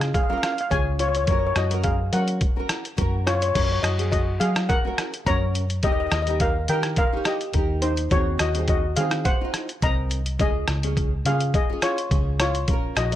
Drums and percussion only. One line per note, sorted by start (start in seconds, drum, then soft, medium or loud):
0.01 cross-stick medium
0.01 closed hi-hat medium
0.14 kick loud
0.14 closed hi-hat medium
0.43 cross-stick medium
0.43 closed hi-hat medium
0.58 closed hi-hat medium
0.71 kick medium
0.71 closed hi-hat medium
0.99 closed hi-hat medium
1.15 closed hi-hat medium
1.27 kick loud
1.27 closed hi-hat medium
1.56 cross-stick medium
1.56 closed hi-hat medium
1.71 closed hi-hat medium
1.84 kick medium
1.84 closed hi-hat medium
2.13 closed hi-hat medium
2.28 closed hi-hat medium
2.41 kick loud
2.41 closed hi-hat medium
2.69 cross-stick medium
2.69 closed hi-hat medium
2.85 closed hi-hat medium
2.98 kick medium
2.98 closed hi-hat medium
3.27 cross-stick medium
3.27 closed hi-hat medium
3.42 closed hi-hat medium
3.55 kick loud
3.55 closed hi-hat medium
3.55 crash loud
3.84 cross-stick medium
3.84 closed hi-hat medium
3.99 closed hi-hat medium
4.12 kick medium
4.12 closed hi-hat medium
4.41 closed hi-hat medium
4.56 cross-stick medium
4.56 closed hi-hat medium
4.70 kick loud
4.70 closed hi-hat medium
4.98 cross-stick medium
4.98 closed hi-hat medium
5.14 closed hi-hat medium
5.27 kick medium
5.27 closed hi-hat medium
5.55 closed hi-hat medium
5.70 closed hi-hat medium
5.83 kick loud
5.83 closed hi-hat medium
6.12 cross-stick medium
6.12 closed hi-hat medium
6.27 closed hi-hat medium
6.40 kick medium
6.40 closed hi-hat medium
6.68 closed hi-hat medium
6.83 cross-stick medium
6.83 closed hi-hat medium
6.96 kick loud
6.96 closed hi-hat medium
7.25 cross-stick loud
7.25 closed hi-hat medium
7.41 closed hi-hat medium
7.53 kick medium
7.53 closed hi-hat medium
7.82 closed hi-hat medium
7.97 closed hi-hat medium
8.11 kick loud
8.11 closed hi-hat medium
8.39 cross-stick medium
8.39 closed hi-hat medium
8.55 closed hi-hat medium
8.68 kick medium
8.68 closed hi-hat medium
8.97 closed hi-hat medium
9.11 cross-stick medium
9.11 closed hi-hat medium
9.25 kick loud
9.25 closed hi-hat medium
9.54 cross-stick medium
9.54 closed hi-hat medium
9.69 closed hi-hat medium
9.82 kick medium
9.82 closed hi-hat medium
10.11 closed hi-hat medium
10.26 closed hi-hat medium
10.39 kick loud
10.39 closed hi-hat medium
10.68 cross-stick medium
10.68 closed hi-hat medium
10.83 closed hi-hat medium
10.97 kick medium
10.97 closed hi-hat medium
11.26 closed hi-hat medium
11.40 closed hi-hat medium
11.54 kick loud
11.54 closed hi-hat medium
11.82 cross-stick medium
11.82 closed hi-hat medium
11.98 closed hi-hat medium
12.11 kick medium
12.11 closed hi-hat medium
12.40 cross-stick medium
12.40 closed hi-hat medium
12.55 closed hi-hat medium
12.68 kick loud
12.68 closed hi-hat medium
12.97 cross-stick medium
12.97 closed hi-hat medium
13.12 closed hi-hat medium